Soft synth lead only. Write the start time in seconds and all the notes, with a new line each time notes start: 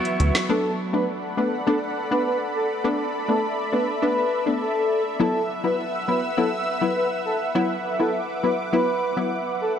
0.49 A4
0.93 B4
1.37 B4
1.67 A4
2.12 B4
2.26 B4
2.56 A4
3.29 A4
3.73 B4
4.03 B4
4.61 A4
5.20 A4
5.64 B4
6.08 B4
6.37 A4
6.82 B4
6.96 B4
7.26 A4
8.00 A4
8.44 B4
8.73 B4
9.61 A4